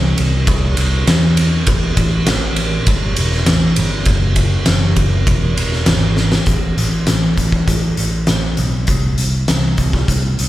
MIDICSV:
0, 0, Header, 1, 3, 480
1, 0, Start_track
1, 0, Tempo, 600601
1, 1338, Time_signature, 4, 2, 24, 8
1, 8380, End_track
2, 0, Start_track
2, 0, Title_t, "Picked electric bass"
2, 0, Program_c, 0, 34
2, 0, Note_on_c, 0, 36, 89
2, 102, Note_off_c, 0, 36, 0
2, 150, Note_on_c, 0, 36, 93
2, 343, Note_off_c, 0, 36, 0
2, 383, Note_on_c, 0, 36, 104
2, 579, Note_off_c, 0, 36, 0
2, 626, Note_on_c, 0, 36, 101
2, 820, Note_off_c, 0, 36, 0
2, 860, Note_on_c, 0, 40, 88
2, 1254, Note_off_c, 0, 40, 0
2, 1339, Note_on_c, 0, 33, 98
2, 1536, Note_off_c, 0, 33, 0
2, 1577, Note_on_c, 0, 33, 95
2, 1774, Note_off_c, 0, 33, 0
2, 1825, Note_on_c, 0, 33, 85
2, 2216, Note_off_c, 0, 33, 0
2, 2293, Note_on_c, 0, 31, 105
2, 2492, Note_off_c, 0, 31, 0
2, 2547, Note_on_c, 0, 28, 88
2, 2739, Note_off_c, 0, 28, 0
2, 2780, Note_on_c, 0, 33, 91
2, 2975, Note_off_c, 0, 33, 0
2, 3023, Note_on_c, 0, 31, 96
2, 3217, Note_off_c, 0, 31, 0
2, 3250, Note_on_c, 0, 30, 97
2, 3646, Note_off_c, 0, 30, 0
2, 3741, Note_on_c, 0, 30, 91
2, 3936, Note_off_c, 0, 30, 0
2, 3974, Note_on_c, 0, 30, 91
2, 4172, Note_off_c, 0, 30, 0
2, 4211, Note_on_c, 0, 28, 103
2, 4410, Note_off_c, 0, 28, 0
2, 4455, Note_on_c, 0, 28, 96
2, 4652, Note_off_c, 0, 28, 0
2, 4696, Note_on_c, 0, 32, 82
2, 5090, Note_off_c, 0, 32, 0
2, 5173, Note_on_c, 0, 33, 89
2, 5376, Note_off_c, 0, 33, 0
2, 5416, Note_on_c, 0, 33, 83
2, 5618, Note_off_c, 0, 33, 0
2, 5661, Note_on_c, 0, 33, 83
2, 5861, Note_off_c, 0, 33, 0
2, 5899, Note_on_c, 0, 33, 83
2, 6100, Note_off_c, 0, 33, 0
2, 6137, Note_on_c, 0, 33, 91
2, 6339, Note_off_c, 0, 33, 0
2, 6383, Note_on_c, 0, 33, 83
2, 6583, Note_off_c, 0, 33, 0
2, 6629, Note_on_c, 0, 33, 78
2, 6826, Note_off_c, 0, 33, 0
2, 6864, Note_on_c, 0, 35, 85
2, 7064, Note_off_c, 0, 35, 0
2, 7101, Note_on_c, 0, 36, 90
2, 7302, Note_off_c, 0, 36, 0
2, 7340, Note_on_c, 0, 36, 89
2, 7542, Note_off_c, 0, 36, 0
2, 7581, Note_on_c, 0, 36, 86
2, 7783, Note_off_c, 0, 36, 0
2, 7820, Note_on_c, 0, 36, 93
2, 8022, Note_off_c, 0, 36, 0
2, 8060, Note_on_c, 0, 36, 96
2, 8262, Note_off_c, 0, 36, 0
2, 8312, Note_on_c, 0, 36, 87
2, 8380, Note_off_c, 0, 36, 0
2, 8380, End_track
3, 0, Start_track
3, 0, Title_t, "Drums"
3, 141, Note_on_c, 9, 51, 70
3, 221, Note_off_c, 9, 51, 0
3, 376, Note_on_c, 9, 51, 106
3, 378, Note_on_c, 9, 36, 111
3, 456, Note_off_c, 9, 51, 0
3, 457, Note_off_c, 9, 36, 0
3, 615, Note_on_c, 9, 51, 78
3, 695, Note_off_c, 9, 51, 0
3, 858, Note_on_c, 9, 51, 103
3, 860, Note_on_c, 9, 38, 107
3, 938, Note_off_c, 9, 51, 0
3, 939, Note_off_c, 9, 38, 0
3, 1096, Note_on_c, 9, 51, 77
3, 1176, Note_off_c, 9, 51, 0
3, 1331, Note_on_c, 9, 51, 108
3, 1337, Note_on_c, 9, 36, 113
3, 1411, Note_off_c, 9, 51, 0
3, 1417, Note_off_c, 9, 36, 0
3, 1574, Note_on_c, 9, 51, 78
3, 1576, Note_on_c, 9, 36, 83
3, 1653, Note_off_c, 9, 51, 0
3, 1656, Note_off_c, 9, 36, 0
3, 1810, Note_on_c, 9, 51, 110
3, 1812, Note_on_c, 9, 38, 118
3, 1890, Note_off_c, 9, 51, 0
3, 1891, Note_off_c, 9, 38, 0
3, 2049, Note_on_c, 9, 51, 78
3, 2129, Note_off_c, 9, 51, 0
3, 2290, Note_on_c, 9, 51, 113
3, 2293, Note_on_c, 9, 36, 115
3, 2370, Note_off_c, 9, 51, 0
3, 2373, Note_off_c, 9, 36, 0
3, 2529, Note_on_c, 9, 51, 83
3, 2609, Note_off_c, 9, 51, 0
3, 2654, Note_on_c, 9, 38, 34
3, 2734, Note_off_c, 9, 38, 0
3, 2768, Note_on_c, 9, 51, 102
3, 2769, Note_on_c, 9, 38, 112
3, 2847, Note_off_c, 9, 51, 0
3, 2849, Note_off_c, 9, 38, 0
3, 3007, Note_on_c, 9, 51, 83
3, 3087, Note_off_c, 9, 51, 0
3, 3240, Note_on_c, 9, 51, 97
3, 3247, Note_on_c, 9, 36, 112
3, 3320, Note_off_c, 9, 51, 0
3, 3327, Note_off_c, 9, 36, 0
3, 3483, Note_on_c, 9, 51, 77
3, 3487, Note_on_c, 9, 36, 84
3, 3563, Note_off_c, 9, 51, 0
3, 3567, Note_off_c, 9, 36, 0
3, 3721, Note_on_c, 9, 51, 105
3, 3723, Note_on_c, 9, 38, 115
3, 3801, Note_off_c, 9, 51, 0
3, 3803, Note_off_c, 9, 38, 0
3, 3967, Note_on_c, 9, 51, 74
3, 3970, Note_on_c, 9, 36, 76
3, 4047, Note_off_c, 9, 51, 0
3, 4049, Note_off_c, 9, 36, 0
3, 4211, Note_on_c, 9, 36, 118
3, 4213, Note_on_c, 9, 51, 104
3, 4291, Note_off_c, 9, 36, 0
3, 4293, Note_off_c, 9, 51, 0
3, 4455, Note_on_c, 9, 51, 77
3, 4535, Note_off_c, 9, 51, 0
3, 4573, Note_on_c, 9, 38, 36
3, 4653, Note_off_c, 9, 38, 0
3, 4684, Note_on_c, 9, 51, 103
3, 4686, Note_on_c, 9, 38, 114
3, 4764, Note_off_c, 9, 51, 0
3, 4766, Note_off_c, 9, 38, 0
3, 4929, Note_on_c, 9, 38, 70
3, 5009, Note_off_c, 9, 38, 0
3, 5049, Note_on_c, 9, 38, 99
3, 5129, Note_off_c, 9, 38, 0
3, 5165, Note_on_c, 9, 42, 85
3, 5170, Note_on_c, 9, 36, 98
3, 5245, Note_off_c, 9, 42, 0
3, 5249, Note_off_c, 9, 36, 0
3, 5417, Note_on_c, 9, 42, 70
3, 5497, Note_off_c, 9, 42, 0
3, 5648, Note_on_c, 9, 42, 91
3, 5649, Note_on_c, 9, 38, 114
3, 5728, Note_off_c, 9, 42, 0
3, 5729, Note_off_c, 9, 38, 0
3, 5894, Note_on_c, 9, 36, 73
3, 5894, Note_on_c, 9, 42, 67
3, 5974, Note_off_c, 9, 36, 0
3, 5974, Note_off_c, 9, 42, 0
3, 6013, Note_on_c, 9, 36, 78
3, 6093, Note_off_c, 9, 36, 0
3, 6135, Note_on_c, 9, 36, 93
3, 6135, Note_on_c, 9, 42, 88
3, 6215, Note_off_c, 9, 36, 0
3, 6215, Note_off_c, 9, 42, 0
3, 6373, Note_on_c, 9, 42, 71
3, 6452, Note_off_c, 9, 42, 0
3, 6608, Note_on_c, 9, 42, 89
3, 6610, Note_on_c, 9, 38, 107
3, 6688, Note_off_c, 9, 42, 0
3, 6690, Note_off_c, 9, 38, 0
3, 6850, Note_on_c, 9, 42, 67
3, 6930, Note_off_c, 9, 42, 0
3, 7088, Note_on_c, 9, 42, 83
3, 7096, Note_on_c, 9, 36, 102
3, 7168, Note_off_c, 9, 42, 0
3, 7176, Note_off_c, 9, 36, 0
3, 7335, Note_on_c, 9, 42, 63
3, 7415, Note_off_c, 9, 42, 0
3, 7576, Note_on_c, 9, 42, 84
3, 7578, Note_on_c, 9, 38, 110
3, 7656, Note_off_c, 9, 42, 0
3, 7658, Note_off_c, 9, 38, 0
3, 7813, Note_on_c, 9, 42, 59
3, 7817, Note_on_c, 9, 36, 82
3, 7893, Note_off_c, 9, 42, 0
3, 7897, Note_off_c, 9, 36, 0
3, 7937, Note_on_c, 9, 38, 32
3, 7939, Note_on_c, 9, 36, 83
3, 8017, Note_off_c, 9, 38, 0
3, 8019, Note_off_c, 9, 36, 0
3, 8058, Note_on_c, 9, 36, 92
3, 8058, Note_on_c, 9, 42, 81
3, 8138, Note_off_c, 9, 36, 0
3, 8138, Note_off_c, 9, 42, 0
3, 8302, Note_on_c, 9, 42, 65
3, 8380, Note_off_c, 9, 42, 0
3, 8380, End_track
0, 0, End_of_file